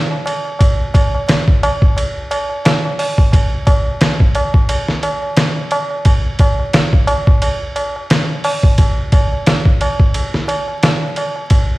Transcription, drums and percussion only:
0.11 tabla na soft
0.26 ride medium
0.26 tabla na medium
0.45 tabla na soft
0.59 kick loud
0.59 ride medium
0.59 tabla na medium
0.94 kick loud
0.94 ride medium
0.94 tabla na medium
1.15 tabla na soft
1.28 snare loud
1.28 ride medium
1.28 tabla na medium
1.48 kick medium
1.63 ride medium
1.63 tabla na loud
1.82 kick loud
1.82 tabla na soft
1.97 ride medium
1.97 tabla na medium
2.31 ride medium
2.31 tabla na loud
2.50 tabla na soft
2.65 snare loud
2.65 ride medium
2.65 tabla na medium
2.85 tabla na soft
2.99 open hi-hat medium
2.99 tabla na medium
3.18 kick loud
3.18 tabla na soft
3.32 kick loud
3.32 ride medium
3.32 tabla na medium
3.67 kick medium
3.67 ride medium
3.67 tabla na medium
3.85 tabla na soft
4.01 snare loud
4.01 ride medium
4.01 tabla na soft
4.20 kick loud
4.35 ride medium
4.35 tabla na loud
4.54 kick loud
4.54 tabla na soft
4.69 ride medium
4.69 tabla na medium
4.88 snare soft
5.03 ride medium
5.03 tabla na loud
5.22 tabla na soft
5.37 snare loud
5.37 ride medium
5.37 tabla na soft
5.56 tabla na soft
5.71 ride medium
5.71 tabla na loud
5.91 tabla na soft
6.05 kick loud
6.05 ride medium
6.05 tabla na medium
6.39 kick loud
6.39 ride medium
6.39 tabla na medium
6.60 tabla na soft
6.73 snare loud
6.73 ride medium
6.73 tabla na soft
6.93 kick loud
7.07 ride medium
7.07 tabla na loud
7.27 kick loud
7.27 tabla na soft
7.42 ride medium
7.42 tabla na medium
7.76 ride medium
7.76 tabla na medium
7.96 tabla na soft
8.10 snare loud
8.10 ride medium
8.10 tabla na medium
8.30 tabla na soft
8.44 open hi-hat medium
8.44 tabla na medium
8.63 kick loud
8.63 tabla na soft
8.78 kick loud
8.78 ride medium
8.78 tabla na medium
9.12 kick loud
9.12 ride medium
9.12 tabla na medium
9.32 tabla na soft
9.46 snare loud
9.46 ride medium
9.46 tabla na soft
9.65 kick medium
9.81 ride medium
9.81 tabla na medium
10.00 kick loud
10.00 tabla na soft
10.14 ride medium
10.14 tabla na soft
10.34 snare soft
10.48 ride medium
10.48 tabla na medium
10.68 tabla na soft
10.83 snare loud
10.83 ride medium
10.83 tabla na medium
11.03 tabla na soft
11.16 ride medium
11.16 tabla na medium
11.36 tabla na soft
11.50 kick loud
11.50 ride medium
11.50 tabla na medium

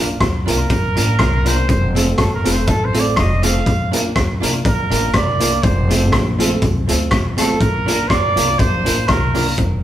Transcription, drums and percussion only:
0.20 kick loud
0.20 cross-stick loud
0.20 closed hi-hat medium
0.48 closed hi-hat medium
0.70 kick loud
0.70 closed hi-hat medium
0.97 closed hi-hat medium
1.19 kick loud
1.19 cross-stick loud
1.19 closed hi-hat medium
1.46 closed hi-hat loud
1.69 kick loud
1.69 closed hi-hat medium
1.96 closed hi-hat medium
2.18 kick loud
2.18 cross-stick loud
2.18 closed hi-hat medium
2.45 closed hi-hat medium
2.67 kick loud
2.67 closed hi-hat medium
2.94 closed hi-hat medium
3.16 kick loud
3.16 cross-stick loud
3.16 closed hi-hat medium
3.43 closed hi-hat loud
3.66 kick loud
3.66 closed hi-hat medium
3.93 closed hi-hat medium
4.16 kick loud
4.16 cross-stick loud
4.16 closed hi-hat medium
4.43 closed hi-hat loud
4.65 kick loud
4.65 closed hi-hat medium
4.91 closed hi-hat medium
5.14 kick loud
5.14 cross-stick loud
5.14 closed hi-hat medium
5.40 closed hi-hat loud
5.63 kick loud
5.63 closed hi-hat medium
5.90 closed hi-hat medium
6.12 kick loud
6.12 cross-stick loud
6.12 closed hi-hat medium
6.40 closed hi-hat loud
6.62 kick loud
6.62 closed hi-hat medium
6.89 closed hi-hat medium
7.11 kick loud
7.11 cross-stick loud
7.11 closed hi-hat medium
7.38 cross-stick medium
7.38 closed hi-hat loud
7.61 kick loud
7.61 closed hi-hat medium
7.88 closed hi-hat medium
8.10 kick loud
8.10 cross-stick loud
8.10 closed hi-hat medium
8.37 closed hi-hat loud
8.59 kick loud
8.59 closed hi-hat medium
8.86 closed hi-hat medium
9.08 kick loud
9.08 cross-stick loud
9.08 closed hi-hat medium
9.35 open hi-hat medium
9.58 kick loud
9.58 closed hi-hat medium

